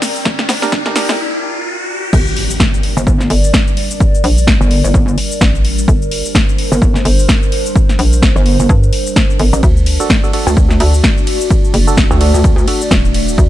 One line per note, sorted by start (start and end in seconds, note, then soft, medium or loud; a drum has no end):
0.00 1.15 G3 medium
0.00 1.15 D4 medium
0.00 1.15 A#4 medium
0.00 1.19 A#4 medium
0.00 1.15 D5 medium
0.00 1.19 D5 medium
0.00 1.19 G5 medium
0.00 1.19 A#5 medium
0.00 snare medium
0.00 open hi-hat loud
0.00 riser medium
0.00 shaker medium
0.16 shaker soft
0.25 kick loud
0.25 snare medium
0.25 shaker soft
0.39 snare medium
0.49 0.84 A#1 loud
0.49 snare medium
0.49 open hi-hat loud
0.49 shaker medium
0.62 0.73 D4 medium
0.62 0.73 G4 medium
0.62 0.73 A#4 loud
0.62 snare medium
0.62 shaker soft
0.72 kick loud
0.72 snare medium
0.72 shaker soft
0.86 1.07 G1 medium
0.86 0.94 D4 medium
0.86 0.94 G4 medium
0.86 0.94 A#4 loud
0.86 snare medium
0.96 1.19 D4 loud
0.96 1.19 G4 medium
0.96 1.19 A#4 loud
0.96 snare loud
0.96 open hi-hat loud
0.96 shaker medium
1.09 1.18 G1 loud
1.09 snare medium
1.09 shaker soft
2.13 2.48 G1 medium
2.13 9.59 G3 medium
2.13 13.49 D4 medium
2.13 9.59 A#4 medium
2.13 5.84 D5 medium
2.13 kick loud
2.13 crash loud
2.13 impact medium
2.13 shaker medium
2.27 shaker soft
2.37 open hi-hat loud
2.51 shaker medium
2.60 kick loud
2.60 snare loud
2.60 shaker medium
2.74 shaker soft
2.83 open hi-hat medium
2.97 3.05 G1 loud
2.97 shaker medium
3.07 3.29 G1 medium
3.07 kick loud
3.07 shaker medium
3.20 snare soft
3.20 shaker soft
3.30 3.52 G1 loud
3.30 open hi-hat loud
3.44 shaker medium
3.54 kick loud
3.54 snare loud
3.54 shaker medium
3.68 shaker soft
3.77 open hi-hat medium
3.91 shaker medium
4.00 kick loud
4.00 shaker medium
4.15 shaker soft
4.24 4.59 A#1 loud
4.24 open hi-hat loud
4.38 shaker medium
4.47 kick loud
4.47 snare loud
4.47 shaker medium
4.61 4.82 G1 loud
4.61 shaker soft
4.71 open hi-hat loud
4.84 4.93 G1 loud
4.84 shaker medium
4.94 5.16 G1 medium
4.94 kick loud
4.94 shaker medium
5.08 shaker soft
5.18 open hi-hat loud
5.32 shaker medium
5.41 5.86 A1 loud
5.41 kick loud
5.41 snare loud
5.41 shaker medium
5.55 shaker soft
5.65 open hi-hat loud
5.79 shaker medium
5.88 6.23 G1 loud
5.88 9.59 C5 medium
5.88 kick loud
5.88 shaker medium
6.02 shaker soft
6.11 open hi-hat loud
6.26 shaker medium
6.35 kick loud
6.35 snare loud
6.35 shaker medium
6.49 shaker soft
6.58 open hi-hat loud
6.72 6.80 G1 loud
6.72 shaker medium
6.82 7.04 G1 loud
6.82 kick loud
6.82 shaker medium
6.96 snare soft
6.96 shaker soft
7.05 7.27 G1 medium
7.05 open hi-hat loud
7.19 shaker medium
7.29 kick loud
7.29 snare loud
7.29 shaker medium
7.43 shaker soft
7.52 open hi-hat loud
7.66 shaker medium
7.76 kick loud
7.76 shaker medium
7.89 snare soft
7.89 shaker soft
7.99 8.34 A#1 loud
7.99 open hi-hat loud
8.13 shaker medium
8.22 kick loud
8.22 snare loud
8.22 shaker medium
8.36 8.57 G1 loud
8.36 shaker soft
8.46 open hi-hat medium
8.59 8.68 G1 loud
8.59 shaker medium
8.69 8.91 G2 medium
8.69 kick loud
8.69 shaker medium
8.83 shaker soft
8.93 open hi-hat loud
9.07 shaker medium
9.16 kick loud
9.16 snare loud
9.16 shaker medium
9.30 shaker soft
9.39 9.51 G1 loud
9.39 open hi-hat loud
9.53 9.61 A1 loud
9.53 shaker medium
9.63 9.98 D2 loud
9.63 13.49 A3 medium
9.63 13.49 F#4 medium
9.63 13.49 D5 medium
9.63 kick loud
9.63 ride medium
9.63 shaker medium
9.77 shaker soft
9.86 open hi-hat loud
9.86 ride medium
10.00 10.10 D4 medium
10.00 10.10 F#4 medium
10.00 10.10 A4 loud
10.00 shaker medium
10.10 kick loud
10.10 snare loud
10.10 ride medium
10.10 shaker medium
10.24 10.32 D4 medium
10.24 10.32 F#4 medium
10.24 10.32 A4 loud
10.24 shaker soft
10.33 10.78 D4 loud
10.33 10.78 F#4 medium
10.33 10.78 A4 loud
10.33 open hi-hat medium
10.33 ride medium
10.47 10.55 D2 loud
10.47 shaker medium
10.57 10.79 D2 medium
10.57 kick loud
10.57 ride medium
10.57 shaker medium
10.70 snare soft
10.70 shaker soft
10.80 11.02 D2 loud
10.80 10.94 D4 medium
10.80 10.94 F#4 medium
10.80 10.94 A4 medium
10.80 open hi-hat loud
10.80 ride medium
10.94 shaker medium
11.04 kick loud
11.04 snare loud
11.04 ride medium
11.04 shaker medium
11.18 shaker soft
11.27 open hi-hat loud
11.27 ride medium
11.41 shaker medium
11.50 kick loud
11.50 ride medium
11.50 shaker medium
11.64 shaker soft
11.74 12.09 F#1 loud
11.74 open hi-hat loud
11.74 ride medium
11.87 11.98 D4 loud
11.87 11.98 F#4 medium
11.87 11.98 A4 loud
11.87 shaker medium
11.97 kick loud
11.97 snare loud
11.97 ride medium
11.97 shaker medium
12.11 12.32 D2 loud
12.11 12.19 D4 medium
12.11 12.19 F#4 medium
12.11 12.19 A4 loud
12.11 shaker soft
12.21 12.65 D4 loud
12.21 12.65 F#4 medium
12.21 12.65 A4 loud
12.21 open hi-hat medium
12.21 ride medium
12.34 12.43 D2 loud
12.34 shaker medium
12.44 12.66 D2 loud
12.44 kick loud
12.44 ride medium
12.44 shaker medium
12.58 shaker soft
12.68 12.81 D4 medium
12.68 12.81 F#4 medium
12.68 12.81 A4 medium
12.68 open hi-hat loud
12.68 ride medium
12.82 shaker medium
12.91 13.36 D#1 loud
12.91 kick loud
12.91 snare loud
12.91 ride medium
12.91 shaker medium
13.05 shaker soft
13.14 open hi-hat medium
13.14 ride medium
13.29 shaker medium
13.38 13.49 D2 loud
13.38 kick loud
13.38 ride medium
13.38 shaker medium